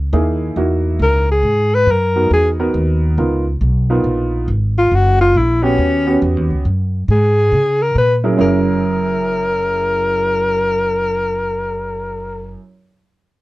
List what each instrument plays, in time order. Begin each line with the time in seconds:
Already playing: upright bass C#2
0.13 upright bass D#2, upright piano A#3 D#4 E4 G#4
0.56 upright bass E2, upright piano A#3 D#4 E4 F#4
0.99 upright bass C#2, alto saxophone A#4
1.31 alto saxophone G#4
1.43 upright bass G#2
1.75 alto saxophone B4
1.87 upright bass F#2
1.91 alto saxophone A#4
2.16 upright piano B3 D#4 F#4 A#4
2.31 upright bass E2, alto saxophone G#4
2.59 upright piano B3 D#4 F#4 A#4
2.74 upright bass D#2
3.18 upright bass C#2, upright piano B3 D#4 F4 A#4
3.61 upright bass B1
3.90 upright piano B3 D#4 F4 A#4
4.04 upright bass A#1
4.48 upright bass G#1
4.78 alto saxophone F4
4.91 upright bass F#1, alto saxophone F#4
5.21 alto saxophone F4
5.35 upright bass A#1, alto saxophone E4
5.62 upright piano B3 C#4 F#4 G4, alto saxophone C#4
5.78 upright bass D#2
6.06 upright piano B3 C#4 F#4 G4
6.22 upright bass E2
6.37 upright bass D#2
6.51 upright bass C#2
6.65 upright bass F#2
7.08 upright bass G#2, alto saxophone G#4
7.52 upright bass C#3
7.82 alto saxophone A#4
7.95 upright bass A#2, alto saxophone B4
8.24 upright piano F#3 C#4 E4 G#4 A#4
8.37 upright bass F#1, upright piano F#2 F#3 E4 G#4 A#4, alto saxophone A#4